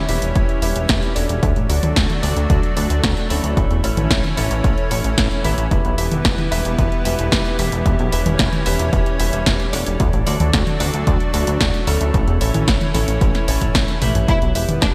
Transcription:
Already playing: G3 C#4 E4
0.08 E1 E4 G4 B4 E5, open hi-hat
0.22 E1, closed hi-hat
0.35 E1, kick, closed hi-hat
0.49 closed hi-hat
0.62 E1 E4 G4 B4 E5, open hi-hat
0.76 E1, closed hi-hat
0.89 E1, kick, snare, closed hi-hat
1.03 closed hi-hat
1.16 E1 D4 F#4 A4 D5, open hi-hat
1.29 E1, closed hi-hat
1.43 D2 F#3 A3 D4, kick, closed hi-hat
1.56 A1, closed hi-hat
1.69 D2 D4 F#4 A4 D5, open hi-hat
1.83 D2, closed hi-hat, high tom
1.96 D2, kick, snare, closed hi-hat
2.10 closed hi-hat, high tom
2.23 D2 D4 F#4 A4 D5, open hi-hat
2.36 D2, closed hi-hat
2.50 D2, kick, closed hi-hat
2.63 closed hi-hat
2.76 D2 D4 F#4 A4 D5, open hi-hat
2.90 D2, closed hi-hat
3.03 D2, kick, snare, closed hi-hat
3.17 closed hi-hat
3.30 D2 C#4 E4 A4 C#5, open hi-hat
3.44 D2, closed hi-hat
3.57 A1 E3 C#4, kick, closed hi-hat
3.70 E2, closed hi-hat
3.84 A1 C#4 E4 A4 C#5, open hi-hat
3.97 A1, closed hi-hat, high tom
4.11 A1, kick, snare, closed hi-hat
4.24 closed hi-hat, high tom
4.37 A1 C#4 E4 A4 C#5, open hi-hat
4.51 A1, closed hi-hat
4.64 A1, kick, closed hi-hat
4.78 closed hi-hat
4.91 A1 C#4 E4 A4 C#5, open hi-hat
5.04 A1, closed hi-hat
5.18 A1, kick, snare, closed hi-hat
5.31 closed hi-hat
5.44 A1 E4 G4 B4 E5, open hi-hat, high tom
5.58 A1, closed hi-hat
5.71 E1 E3 G3 B3, kick, closed hi-hat
5.85 B1, closed hi-hat
5.98 E1 E4 G4 B4 E5, open hi-hat
6.12 E1, closed hi-hat, high tom
6.25 E1, kick, snare, closed hi-hat
6.38 closed hi-hat, high tom
6.51 E1 E4 G4 B4 E5, open hi-hat
6.65 E1, closed hi-hat
6.79 E1, kick, closed hi-hat
6.92 closed hi-hat
7.05 E1 E4 G4 B4 E5, open hi-hat
7.19 E1, closed hi-hat
7.32 E1, kick, snare, closed hi-hat
7.46 closed hi-hat
7.58 E1 E4 G4 B4 E5, open hi-hat
7.72 E1, closed hi-hat
7.86 E1 C#4, kick, closed hi-hat
7.99 B1, closed hi-hat
8.12 E1 E4 G4 B4 E5, open hi-hat
8.26 E1, closed hi-hat, high tom
8.39 E1, kick, snare, closed hi-hat
8.53 closed hi-hat, high tom
8.66 E1 E4 G4 B4 E5, open hi-hat
8.79 E1, closed hi-hat
8.93 E1, kick, closed hi-hat
9.06 closed hi-hat
9.19 E1 E4 G4 B4 E5, open hi-hat
9.33 E1, closed hi-hat
9.46 E1, kick, snare, closed hi-hat
9.60 closed hi-hat
9.73 E1 D4 F#4 A4 D5, open hi-hat
9.86 E1, closed hi-hat
10.00 D2 F#3 A3 D4, kick, closed hi-hat
10.13 A1, closed hi-hat
10.26 D2 D4 F#4 A4 D5, open hi-hat
10.40 D2, closed hi-hat, high tom
10.53 D2, kick, snare, closed hi-hat
10.67 closed hi-hat, high tom
10.80 D2 D4 F#4 A4 D5, open hi-hat
10.94 D2, closed hi-hat
11.07 D2, kick, closed hi-hat
11.20 closed hi-hat
11.34 D2 D4 F#4 A4 D5, open hi-hat
11.47 D2, closed hi-hat
11.61 D2, kick, snare, closed hi-hat
11.74 closed hi-hat
11.87 D2 C#4 E4 A4 C#5, open hi-hat
12.01 D2, closed hi-hat
12.14 A1 E3 C#4, kick, closed hi-hat
12.28 E2, closed hi-hat
12.41 A1 C#4 E4 A4 C#5, open hi-hat
12.54 A1, closed hi-hat, high tom
12.68 A1, kick, snare, closed hi-hat
12.81 closed hi-hat, high tom
12.94 A1 C#4 E4 A4 C#5, open hi-hat, high tom
13.08 A1, closed hi-hat
13.21 A1, kick, closed hi-hat
13.35 snare, closed hi-hat
13.48 A1 C#4 E4 A4 C#5, open hi-hat
13.61 A1, kick, closed hi-hat
13.75 A1, kick, snare, closed hi-hat
13.88 closed hi-hat, high tom
14.02 A1 E4 G4 B4 E5, open hi-hat, mid tom
14.15 A1, closed hi-hat, mid tom
14.28 E1 E3 G3 B3 E4, kick, closed hi-hat
14.42 B1, closed hi-hat
14.55 E1 E4 G4 B4 E5, open hi-hat
14.69 E1, closed hi-hat, high tom
14.82 E1 D4, kick, snare, closed hi-hat

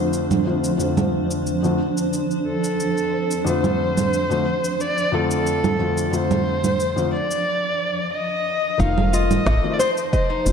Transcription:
Already playing: F2 D3 F3 A3 C4 D4 F4 C5
0.13 cabasa
0.31 low conga, cabasa
0.45 F2 D3 F3 A3 C4 F4
0.64 cabasa
0.78 F2 D3 F3 A3 C4 F4, cabasa
0.97 low conga, cabasa
1.31 cabasa
1.47 cabasa
1.63 F2 D3 F3 A3 C4 F4, cabasa
1.97 cabasa
2.13 cabasa
2.31 cabasa
2.47 A4
2.64 cabasa
2.80 cabasa
2.98 cabasa
3.31 cabasa
3.45 F2 D3 F3 A3 C4 C5, cabasa
3.49 F4
3.64 low conga, cabasa
3.97 low conga, cabasa
4.13 cabasa
4.30 F2 D3 F3 A3 C4 F4, cabasa
4.64 cabasa
4.80 D5, cabasa
4.98 cabasa
5.12 F2 D3 F3 A3 C4 F4 A4
5.31 cabasa
5.47 cabasa
5.64 low conga, cabasa
5.79 F2 D3 F3 A3 C4 F4
5.97 cabasa
6.11 F2 D3 F3 A3 C4 C5, cabasa
6.15 F4
6.31 low conga, cabasa
6.64 low conga, cabasa
6.80 cabasa
6.96 F2 D3 F3 A3 C4 F4, cabasa
7.14 D5
7.31 cabasa
8.13 D#5
8.78 F1 D#3 F3 A3 C4 D#4 F5 A5, kick, cabasa
8.82 F4
8.98 low conga
9.13 F4 D#5, cabasa
9.31 low conga, cabasa
9.46 A1 A4, kick, snare, cabasa
9.63 D#3 F3 A3 C4 F4
9.73 D5
9.79 C5, cabasa
9.97 cabasa
10.13 C5 D#5, kick, cabasa
10.30 D#4
10.45 F1 D#3 F3 A3 C4 F4, cabasa

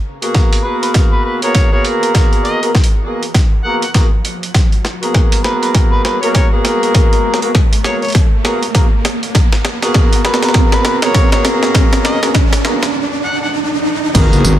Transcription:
Already playing: riser
0.22 A#3 B3 F#4 G#4 A#4, closed hi-hat
0.35 kick, snare
0.53 closed hi-hat
0.64 A#3 B3 F#4 G#4 A#4 B4
0.83 B4, closed hi-hat
0.94 kick, snare, closed hi-hat
1.12 B4
1.25 B4
1.42 A#3 B3 F#4 G#4 A#4 C#5, closed hi-hat
1.55 kick, snare, closed hi-hat
1.72 A#3 B3 F#4 G#4 A#4 C#5
1.85 closed hi-hat
2.03 closed hi-hat
2.15 kick, snare, closed hi-hat
2.33 closed hi-hat
2.44 D#5, closed hi-hat
2.62 A#3 B3 F#4 G#4 A#4, closed hi-hat
2.75 kick, snare
2.84 closed hi-hat
3.05 A#3 B3 F#4 G#4 A#4
3.23 closed hi-hat
3.34 kick, snare, closed hi-hat
3.64 A#3 B3 F#4 G#4 A#4 F#5
3.82 F#5, closed hi-hat
3.94 A#3 B3 F#4 G#4 A#4, kick, snare, closed hi-hat
4.25 closed hi-hat
4.43 closed hi-hat
4.54 kick, snare, closed hi-hat
4.72 closed hi-hat
4.85 snare
5.02 A#3 B3 F#4 G#4 A#4, closed hi-hat
5.14 kick, snare
5.32 closed hi-hat
5.44 A#3 B3 F#4 G#4 A#4 B4, snare
5.62 B4, closed hi-hat
5.74 kick, snare, closed hi-hat
5.92 B4
6.05 B4, snare
6.21 A#3 B3 F#4 G#4 A#4 C#5, closed hi-hat
6.35 C#5, kick, snare, closed hi-hat
6.53 A#3 B3 F#4 G#4 A#4
6.65 snare, closed hi-hat
6.83 closed hi-hat
6.95 kick, snare, closed hi-hat
7.13 closed hi-hat
7.34 snare
7.42 A#3 B3 F#4 G#4 A#4, closed hi-hat
7.55 kick, snare
7.73 closed hi-hat
7.84 A#3 B3 F#4 G#4 A#4 C#5, snare
8.02 C#5, closed hi-hat
8.05 closed hi-hat
8.08 closed hi-hat
8.10 closed hi-hat
8.12 kick, snare, closed hi-hat
8.15 closed hi-hat
8.44 A#3 B3 F#4 G#4 A#4, snare
8.63 closed hi-hat
8.74 A#3 B3 F#4 G#4 A#4, kick, snare, closed hi-hat
9.05 snare, closed hi-hat
9.23 closed hi-hat
9.35 kick, snare, closed hi-hat
9.52 snare, closed hi-hat
9.65 snare
9.82 A#3 B3 F#4 G#4 A#4, snare, closed hi-hat
9.94 kick, snare
10.13 closed hi-hat
10.25 A#3 B3 F#4 G#4 A#4 B4, snare
10.34 snare
10.43 B4, snare, closed hi-hat
10.49 snare
10.54 kick, snare, closed hi-hat
10.72 B4, snare
10.85 B4, snare
11.02 A#3 B3 F#4 G#4 A#4 C#5, snare, closed hi-hat
11.15 kick, snare, closed hi-hat
11.32 A#3 B3 F#4 G#4 A#4 C#5, snare
11.45 snare, closed hi-hat
11.63 snare
11.75 kick, snare, closed hi-hat
11.93 snare, closed hi-hat
12.05 D#5, snare
12.22 A#3 B3 F#4 G#4 A#4, snare, closed hi-hat
12.35 kick, snare
12.53 snare, closed hi-hat
12.65 A#3 B3 F#4 G#4 A#4, snare
12.83 snare, closed hi-hat
13.25 F#5
13.43 F#5
14.14 G#1 A#3 B3 F#4 G#4 A#4, kick, closed hi-hat, tambourine, crash, impact
14.32 F#1, closed hi-hat, tambourine
14.44 G#1, snare, tambourine

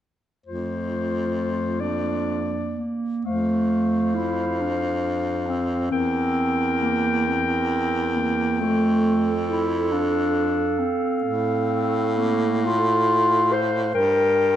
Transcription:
0.46 F2 A3 F4 C5
1.80 A#3 D4 D5
2.78 A#3
3.25 F2 A3 C5 F5
4.15 E4
4.60 D4
5.48 C4
5.91 E2 C4 A#4 G5
6.82 A#3
7.27 C4
8.16 A#3
8.60 F2 A3 A4
9.48 E4
9.92 D4 F5
10.79 C4
11.23 A2 C4
12.18 A#3
12.66 F4
13.52 C5
13.94 G2 A#4 G5

